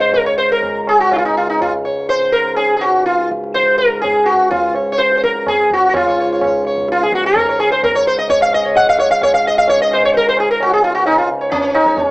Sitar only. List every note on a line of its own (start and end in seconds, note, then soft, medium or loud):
0.00 0.13 C5 medium
0.14 0.26 A#4 medium
0.26 0.37 C#5 medium
0.38 0.50 C5 medium
0.52 0.89 A#4 medium
0.89 1.00 G#4 medium
1.00 1.12 F#4 medium
1.13 1.18 D#4 medium
1.13 1.15 F4 medium
1.18 1.24 F4 medium
1.25 1.37 D#4 medium
1.37 1.49 F4 medium
1.50 1.61 D#4 medium
1.62 1.72 F4 medium
1.85 2.08 C#5 soft
2.09 2.34 C5 medium
2.32 2.56 A#4 medium
2.56 2.75 G#4 medium
2.77 2.82 G#4 medium
2.81 3.05 F#4 medium
3.06 3.29 F4 medium
3.54 3.77 C5 loud
3.78 4.01 A#4 medium
4.02 4.27 G#4 medium
4.26 4.50 F#4 medium
4.51 4.73 F4 medium
4.75 4.91 C#5 soft
4.92 4.98 C#5 medium
4.98 5.16 C5 loud
5.17 5.23 C5 medium
5.23 5.47 A#4 medium
5.48 5.69 G#4 medium
5.73 5.88 F#4 medium
5.89 5.94 F#4 medium
5.94 6.62 F4 medium
5.94 6.06 C#5 soft
6.07 6.19 C#5 soft
6.20 6.31 C#5 soft
6.32 6.43 C#5 soft
6.44 6.65 C#5 soft
6.67 6.88 C#5 soft
6.92 7.02 F4 medium
7.03 7.14 G#4 medium
7.15 7.25 F#4 medium
7.26 7.59 A#4 medium
7.37 7.48 C#5 soft
7.49 7.70 C#5 soft
7.60 7.71 G#4 medium
7.72 7.83 C5 medium
7.84 7.95 A#4 medium
7.95 8.07 C#5 medium
8.07 8.18 C5 medium
8.18 8.29 D#5 medium
8.30 8.40 C#5 loud
8.42 8.53 F5 loud
8.54 8.75 D#5 loud
8.65 8.86 C#5 soft
8.77 8.88 F#5 loud
8.89 8.99 F5 loud
8.99 9.10 C#5 medium
9.11 9.23 F5 loud
9.23 9.34 C#5 loud
9.34 9.46 F5 medium
9.47 9.58 D#5 loud
9.58 9.69 F5 loud
9.69 9.81 C#5 loud
9.82 9.93 D#5 loud
9.93 10.04 C5 medium
10.05 10.13 C#5 loud
10.13 10.27 A#4 loud
10.13 10.15 C5 medium
10.29 10.39 C5 medium
10.40 10.50 G#4 medium
10.51 10.61 A#4 medium
10.62 10.73 F#4 medium
10.73 10.83 G#4 medium
10.84 10.94 F4 medium
10.94 11.06 F#4 medium
11.06 11.17 D#4 medium
11.18 11.28 F4 medium
11.41 11.62 C#5 soft
11.51 11.75 C#4 medium
11.63 11.84 C#5 soft
11.74 12.04 D#4 medium
11.86 11.96 C#5 soft
11.97 12.11 C#5 soft
12.04 12.11 C#4 medium